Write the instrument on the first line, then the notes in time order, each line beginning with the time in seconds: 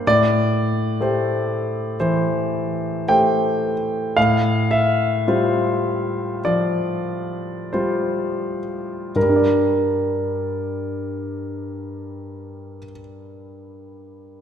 grand piano
0.07 A2 D5
1.01 A3 G4 C5
2.00 E3 C5
3.09 A3 G4 C5 G5
4.17 A2 F5
4.71 E5
5.27 G3 F4 C5
6.45 F3 D5
7.73 G3 F4 C5
9.16 G2 A#4
9.22 G3
9.29 D4
9.36 D5